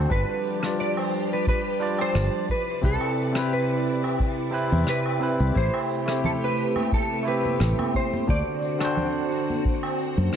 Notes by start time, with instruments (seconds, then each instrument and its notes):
Already playing: tine electric piano D3 D4 F#4 C5
0.09 fingered electric bass G1, string machine F3 G4 D5, tine electric piano G3 D4 F4 B4, clean electric guitar B4, kick, shaker
0.44 shaker
0.60 tine electric piano G3 D4, cross-stick, shaker
0.64 tine electric piano F4 D5
0.78 clean electric guitar D5, shaker
0.97 clean electric guitar C5, low woodblock
1.12 shaker
1.30 clean electric guitar B4, shaker
1.47 clean electric guitar B4, kick, shaker
1.79 tine electric piano G3 D4 F4 D5, shaker
1.99 clean electric guitar C5, low woodblock, shaker
2.15 fingered electric bass G1, cross-stick, shaker
2.49 string machine C3 E4, clean electric guitar B4, kick, shaker
2.67 shaker
2.81 fingered electric bass C2, tine electric piano C3 C4 E4 B4, clean electric guitar A4, kick, shaker
3.01 low woodblock
3.17 shaker
3.32 tine electric piano C3 C4, cross-stick, shaker
3.36 tine electric piano E4 B4, clean electric guitar G4
3.51 clean electric guitar B4, shaker
3.86 shaker
4.04 low woodblock, shaker
4.19 kick, shaker
4.51 tine electric piano C3 C4 E4 B4, shaker
4.72 fingered electric bass E2, shaker
4.87 clean electric guitar B4, cross-stick, shaker
5.06 low woodblock
5.20 tine electric piano C3 C4 E4 B4, shaker
5.40 fingered electric bass C2, shaker
5.54 fingered electric bass A1, string machine C3 A3 G4, tine electric piano A3 E4 G4 C5, clean electric guitar C5, kick, shaker
5.74 low woodblock
5.89 shaker
6.05 tine electric piano A3 E4 G4, cross-stick, shaker
6.11 tine electric piano C4
6.24 clean electric guitar A4, low conga, shaker
6.44 clean electric guitar B4
6.57 shaker
6.76 high conga, low woodblock, shaker
6.92 clean electric guitar A4, kick, shaker
7.23 tine electric piano A3 E4, shaker
7.27 tine electric piano C4 G4, clean electric guitar B4
7.44 high conga, shaker
7.60 fingered electric bass A1, cross-stick, shaker
7.79 high conga, low woodblock
7.94 clean electric guitar C5, kick, shaker
8.13 high conga, shaker
8.27 fingered electric bass D2, tine electric piano D3 D4 F#4 C5, string machine D3 C4 F#4, clean electric guitar D5, kick, shaker
8.62 shaker
8.78 tine electric piano D3 D4 F#4, cross-stick, low woodblock, shaker
8.85 tine electric piano C5
8.96 low conga, shaker
9.31 shaker
9.49 high conga, shaker
9.65 kick, shaker
9.83 low woodblock
9.98 shaker
10.17 fingered electric bass F#2, high conga, shaker
10.33 cross-stick, shaker